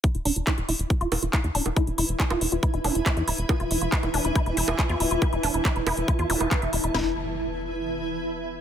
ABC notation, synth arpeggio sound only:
X:1
M:4/4
L:1/16
Q:1/4=139
K:C
V:1 name="Synth arpeggio sound"
E E D E E E E z F F E F E E D E | E E E z F F E F E E D E E E E z | F F E F E E D E E E E z F F E F | E E D E E E E z F F E E B e E E |
E2 z12 z2 |]